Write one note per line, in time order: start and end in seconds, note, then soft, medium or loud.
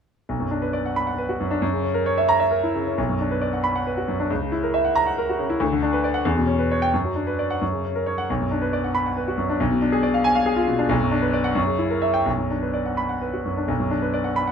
0.29 1.57 B1 medium
0.40 0.58 F#2 soft
0.51 0.69 D4 soft
0.62 0.80 B4 soft
0.73 0.91 D5 medium
0.86 1.03 F#5 soft
0.96 1.14 B5 medium
1.07 1.25 F#5 medium
1.18 1.36 B4 medium
1.29 1.46 F#4 medium
1.40 1.57 F#2 medium
1.51 1.61 D4 medium
1.62 2.94 F#2 medium
1.73 1.90 C#3 medium
1.83 2.01 C#4 soft
1.94 2.12 A#4 medium
2.06 2.23 C#5 medium
2.17 2.35 E5 medium
2.29 2.46 A#5 medium
2.40 2.58 E5 medium
2.51 2.70 A#4 medium
2.64 2.82 E4 soft
2.75 2.93 C#3 soft
2.86 2.98 C#4 soft
2.98 4.26 B1 medium
3.09 3.27 F#2 soft
3.21 3.38 D4 soft
3.31 3.49 B4 soft
3.41 3.59 D5 soft
3.53 3.71 F#5 soft
3.64 3.82 B5 medium
3.76 3.93 F#5 medium
3.87 4.04 B4 soft
3.97 4.15 F#4 soft
4.08 4.26 F#2 soft
4.20 4.30 D4 soft
4.30 5.57 C#2 medium
4.41 4.58 C#3 soft
4.52 4.69 E4 soft
4.63 4.80 A#4 medium
4.74 4.91 E5 medium
4.85 5.02 F#5 medium
4.95 5.13 A#5 medium
5.07 5.24 F#5 medium
5.18 5.35 A#4 medium
5.29 5.46 F#4 medium
5.39 5.56 C#3 medium
5.50 5.61 E4 medium
5.60 6.23 D2 medium
5.72 5.89 D3 medium
5.83 6.00 D4 medium
5.93 6.10 B4 medium
6.04 6.21 D5 medium
6.14 6.25 F#5 medium
6.25 6.90 E2 medium
6.37 6.55 B2 medium
6.47 6.65 C#4 medium
6.59 6.77 B4 medium
6.71 6.89 C#5 medium
6.82 6.93 G5 medium
6.94 7.60 F#2 medium
7.05 7.23 F#3 soft
7.16 7.34 D4 soft
7.27 7.45 B4 soft
7.39 7.57 D5 soft
7.50 7.61 F#5 medium
7.61 8.27 F#2 medium
7.72 7.90 C#3 soft
7.85 8.02 C#4 soft
7.96 8.14 A#4 soft
8.06 8.25 C#5 medium
8.18 8.29 F#5 medium
8.30 9.57 B1 medium
8.41 8.58 F#2 soft
8.51 8.69 D4 soft
8.62 8.80 B4 medium
8.73 8.91 D5 medium
8.84 9.02 F#5 soft
8.95 9.12 B5 medium
9.06 9.24 F#5 soft
9.17 9.34 B4 soft
9.28 9.45 F#4 medium
9.38 9.55 F#2 medium
9.49 9.60 D4 medium
9.60 10.86 B1 medium
9.71 9.88 B2 medium
9.82 9.99 D4 soft
9.92 10.10 G#4 medium
10.03 10.20 D5 medium
10.14 10.31 F5 medium
10.24 10.42 G#5 medium
10.35 10.53 F5 medium
10.46 10.63 G#4 medium
10.56 10.74 F4 medium
10.68 10.85 B2 medium
10.79 10.90 D4 medium
10.89 11.55 B1 medium
11.00 11.19 F#2 medium
11.12 11.30 D4 medium
11.22 11.41 B4 medium
11.33 11.52 D5 medium
11.44 11.57 F#5 medium
11.55 12.24 F#2 medium
11.67 11.86 C#3 medium
11.79 11.98 E4 medium
11.90 12.10 A#4 medium
12.02 12.21 E5 medium
12.14 12.26 G5 medium
12.26 13.65 B1 medium
12.38 12.58 F#2 soft
12.50 12.70 D4 soft
12.62 12.82 B4 soft
12.74 12.93 D5 soft
12.86 13.05 F#5 soft
12.97 13.17 B5 medium
13.09 13.29 F#5 soft
13.22 13.41 B4 soft
13.33 13.53 F#4 soft
13.45 13.65 F#2 soft
13.57 13.69 D4 soft
13.68 14.52 B1 medium
13.80 13.98 F#2 soft
13.91 14.09 D4 soft
14.02 14.21 B4 soft
14.14 14.32 D5 medium
14.24 14.43 F#5 medium
14.36 14.52 B5 medium
14.47 14.52 F#5 medium